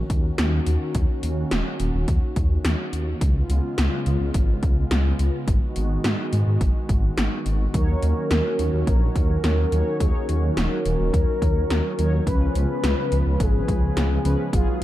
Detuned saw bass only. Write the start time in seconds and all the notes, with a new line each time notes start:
0.10 D#2
0.38 D#2
0.67 D#2
0.95 D#2
1.23 D#2
1.52 D#1
1.80 D#1
1.94 D#1
2.08 D#2
2.36 D#2
2.65 D#2
2.93 D#2
3.21 C#2
3.50 C#2
3.78 C#2
4.06 C#2
4.20 C#2
4.34 G#1
4.63 C#2
4.91 C#2
5.19 C#2
5.48 G#1
5.76 G#1
6.04 G#2
6.33 G#2
6.47 G#2
6.61 G#1
6.89 G#1
7.18 G#1
7.46 G#1
7.74 D#2
8.03 D#2
8.31 D#2
8.59 D#2
8.73 D#2
8.87 A#1
9.15 D#2
9.44 D#2
9.72 D#2
10.00 D#2
10.29 D#2
10.57 D#1
10.86 D#1
11.00 D#1
11.14 D#2
11.42 D#2
11.70 D#2
11.99 D#2
12.27 C#2
12.55 C#2
12.84 C#2
13.12 C#2
13.26 C#2
13.40 G#1
13.68 C#2
13.97 C#2
14.25 C#2
14.53 G#1